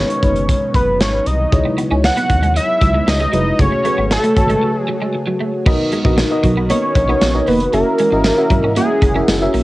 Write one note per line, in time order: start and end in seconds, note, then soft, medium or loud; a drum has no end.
0.00 1.50 B2 medium
0.00 1.50 D#3 medium
0.00 5.62 F#3 medium
0.00 0.23 G#3 medium
0.00 0.23 B3 medium
0.00 3.55 B3 medium
0.00 0.23 D#4 medium
0.00 0.24 B4 medium
0.00 0.74 C#5 loud
0.10 closed hi-hat medium
0.23 0.52 F#1 medium
0.23 1.01 G#3 medium
0.23 1.01 B3 medium
0.23 1.01 D#4 medium
0.23 1.01 B4 medium
0.23 kick medium
0.23 closed hi-hat medium
0.36 closed hi-hat soft
0.49 kick medium
0.49 closed hi-hat medium
0.74 1.02 F#1 loud
0.74 1.02 B4 medium
0.74 kick medium
0.74 closed hi-hat medium
1.01 1.20 G#1 loud
1.01 1.28 C#5 loud
1.01 snare loud
1.01 closed hi-hat loud
1.26 1.46 C2 medium
1.26 1.78 D#5 medium
1.26 closed hi-hat medium
1.52 1.62 C#2 loud
1.52 5.62 C#3 medium
1.52 1.81 G#3 medium
1.52 3.57 G#3 medium
1.52 1.82 D#4 medium
1.52 1.82 E4 medium
1.52 1.82 C#5 medium
1.52 kick loud
1.52 closed hi-hat medium
1.65 muted clean electric guitar stroke soft
1.78 1.89 B3 medium
1.78 closed hi-hat medium
1.90 2.11 C#2 medium
1.90 2.69 G#3 medium
1.90 2.02 C#4 medium
1.90 2.69 D#4 medium
1.90 2.69 E4 medium
1.90 2.69 C#5 medium
2.04 2.52 F#5 loud
2.04 snare loud
2.04 closed hi-hat medium
2.04 tambourine medium
2.17 2.28 B3 medium
2.17 closed hi-hat medium
2.30 2.59 D#2 medium
2.30 muted clean electric guitar stroke soft
2.30 kick medium
2.30 closed hi-hat medium
2.43 2.53 G#3 medium
2.43 closed hi-hat soft
2.56 3.10 E5 loud
2.56 muted clean electric guitar stroke soft
2.56 closed hi-hat loud
2.81 3.01 C#2 medium
2.81 2.92 F#3 medium
2.81 kick medium
2.81 closed hi-hat medium
2.94 3.05 G#3 medium
3.07 3.27 C#2 medium
3.07 3.62 D#5 loud
3.07 muted clean electric guitar stroke soft
3.07 snare loud
3.07 closed hi-hat loud
3.07 tambourine medium
3.20 3.31 G#3 medium
3.33 3.53 F1 medium
3.33 3.44 F#3 medium
3.33 3.52 G#3 medium
3.33 3.53 D#4 medium
3.33 3.53 E4 medium
3.33 3.53 B4 medium
3.33 closed hi-hat medium
3.59 3.69 F#1 loud
3.59 3.78 A3 medium
3.59 5.64 A3 medium
3.59 3.79 F#4 medium
3.59 5.64 F#4 medium
3.59 3.79 G#4 medium
3.59 3.79 C#5 medium
3.59 4.12 C#5 loud
3.59 kick loud
3.59 closed hi-hat medium
3.72 muted clean electric guitar stroke soft
3.85 4.24 A3 medium
3.85 3.96 A3 medium
3.85 4.24 F#4 medium
3.85 4.24 G#4 medium
3.85 4.24 B4 medium
3.85 closed hi-hat medium
3.98 4.18 G#1 medium
3.98 4.09 B3 medium
4.11 4.78 A4 medium
4.11 snare loud
4.11 closed hi-hat medium
4.11 tambourine medium
4.24 4.35 A3 medium
4.24 closed hi-hat medium
4.37 4.56 G#1 medium
4.37 5.15 A3 medium
4.37 5.15 F#4 medium
4.37 5.15 C#5 medium
4.37 5.15 G#5 medium
4.37 muted clean electric guitar stroke soft
4.37 kick medium
4.37 closed hi-hat medium
4.50 4.60 G#3 medium
4.50 closed hi-hat soft
4.63 muted clean electric guitar stroke soft
4.78 5.11 G#4 medium
4.88 4.99 F#3 medium
5.02 5.12 G#3 medium
5.15 muted clean electric guitar stroke soft
5.27 5.38 F#3 medium
5.41 5.51 A3 medium
5.66 5.76 B1 loud
5.66 7.71 D#3 medium
5.66 7.71 A#3 medium
5.66 5.95 B3 medium
5.66 7.71 B3 medium
5.66 5.77 B3 medium
5.66 5.95 D#4 medium
5.66 5.95 F#4 medium
5.66 9.63 F#4 medium
5.66 5.96 A#4 medium
5.66 5.96 D#5 loud
5.66 kick loud
5.66 crash loud
5.92 6.03 G#3 medium
5.92 closed hi-hat medium
6.04 6.24 A#1 loud
6.04 6.24 B3 medium
6.04 6.24 D#4 medium
6.04 6.24 F#4 medium
6.04 6.24 A#4 medium
6.04 6.25 D#5 loud
6.04 muted clean electric guitar stroke soft
6.04 kick loud
6.18 muted clean electric guitar stroke soft
6.18 snare loud
6.18 closed hi-hat medium
6.18 tambourine medium
6.31 6.60 B3 medium
6.31 6.60 D#4 medium
6.31 6.60 F#4 medium
6.31 6.60 A#4 medium
6.31 6.60 D#5 loud
6.43 6.73 B1 loud
6.43 6.55 F#3 medium
6.43 kick medium
6.43 closed hi-hat medium
6.57 6.68 B3 medium
6.70 6.81 A#3 medium
6.70 6.99 B3 medium
6.70 6.99 D#4 medium
6.70 6.99 F#4 medium
6.70 6.99 A#4 medium
6.70 7.49 C#5 loud
6.70 6.99 D#5 medium
6.70 closed hi-hat loud
6.95 7.15 A#1 loud
6.95 muted clean electric guitar stroke soft
6.95 kick medium
6.95 closed hi-hat medium
7.08 7.28 B3 medium
7.08 7.19 B3 medium
7.08 7.28 D#4 medium
7.08 7.28 F#4 medium
7.08 7.28 A#4 medium
7.08 7.28 D#5 medium
7.21 7.41 A#1 medium
7.21 snare loud
7.21 closed hi-hat loud
7.21 tambourine medium
7.34 7.63 B3 medium
7.34 7.63 D#4 medium
7.34 7.63 F#4 medium
7.34 7.64 A#4 medium
7.34 7.64 D#5 medium
7.47 7.67 F1 medium
7.47 7.58 A#3 medium
7.47 7.73 B4 loud
7.47 open hi-hat medium
7.60 closed hi-hat medium
7.73 7.83 F#1 loud
7.73 9.63 E3 medium
7.73 9.63 A#3 medium
7.73 7.84 A#3 medium
7.73 8.02 C#4 medium
7.73 9.63 C#4 medium
7.73 8.02 E4 medium
7.73 8.02 F#4 medium
7.73 8.72 A#4 loud
7.73 8.03 A#4 medium
7.73 8.03 E5 medium
7.73 closed hi-hat medium
7.98 8.10 G#3 medium
7.98 closed hi-hat medium
8.12 8.32 G#1 medium
8.12 8.31 C#4 medium
8.12 8.31 E4 medium
8.12 8.31 F#4 medium
8.12 8.32 A#4 medium
8.12 8.32 D#5 medium
8.12 muted clean electric guitar stroke soft
8.24 muted clean electric guitar stroke soft
8.24 snare loud
8.24 closed hi-hat medium
8.24 tambourine medium
8.37 8.67 C#4 medium
8.37 8.67 E4 medium
8.37 8.67 F#4 medium
8.37 8.67 A#4 medium
8.37 8.67 E5 medium
8.50 8.79 G#1 loud
8.50 8.61 F#3 medium
8.50 kick medium
8.50 closed hi-hat medium
8.64 8.74 C#4 medium
8.76 8.87 A#3 medium
8.76 9.05 C#4 medium
8.76 9.06 E4 medium
8.76 9.06 F#4 medium
8.76 9.50 G#4 medium
8.76 9.06 A#4 medium
8.76 9.06 F#5 medium
8.76 closed hi-hat loud
9.02 9.22 F#1 loud
9.02 muted clean electric guitar stroke soft
9.02 kick loud
9.02 closed hi-hat medium
9.15 9.34 C#4 medium
9.15 9.26 C#4 medium
9.15 9.35 E4 medium
9.15 9.35 F#4 medium
9.15 9.35 A#4 medium
9.15 9.35 E5 medium
9.28 9.48 F#1 loud
9.28 snare loud
9.28 closed hi-hat loud
9.28 tambourine medium
9.41 9.63 C#4 medium
9.41 9.63 E4 medium
9.41 9.63 F#4 medium
9.41 9.63 A#4 medium
9.41 9.63 E5 loud
9.54 9.63 A#1 medium
9.54 9.63 A#3 medium
9.54 open hi-hat medium